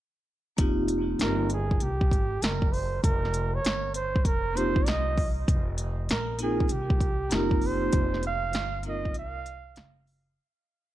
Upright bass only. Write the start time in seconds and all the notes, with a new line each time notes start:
0.59 F1
1.19 G1
1.81 C2
2.11 G#1
2.42 F#1
3.04 F1
3.65 G1
4.25 F1
4.87 C2
5.48 F1
6.10 A#1
6.71 C2
7.32 F#1
7.94 F1
8.54 G1
9.15 C2
9.77 F#1